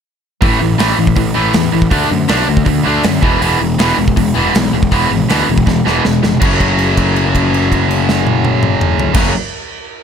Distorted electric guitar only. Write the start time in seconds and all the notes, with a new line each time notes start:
0.41 A2 E3 A3
0.60 A2 E3
0.78 A2 E3 A3
0.97 A2 E3
1.16 A2 E3
1.34 A2 E3 A3
1.53 A2 E3
1.72 A2 E3
1.90 D3 A3 D4
2.09 D3 A3
2.29 D3 A3 D4
2.47 D3 A3
2.65 D3 A3
2.83 D3 A3 D4
3.03 D3 A3
3.21 E2 B2 E3
3.41 E2 B2 E3
3.59 E2 B2
3.78 E2 B2 E3
3.98 E2 B2
4.17 E2 B2
4.36 E2 B2 E3
4.55 E2 B2
4.75 E2 B2
4.92 E2 B2 E3
5.11 E2 B2
5.28 E2 B2 E3
5.49 E2 B2
5.66 E2 B2
5.85 E2 B2 E3
6.04 E2 B2
6.23 E2 B2
6.40 F#2 C#3
6.44 F#3
9.13 F#2 C#3 F#3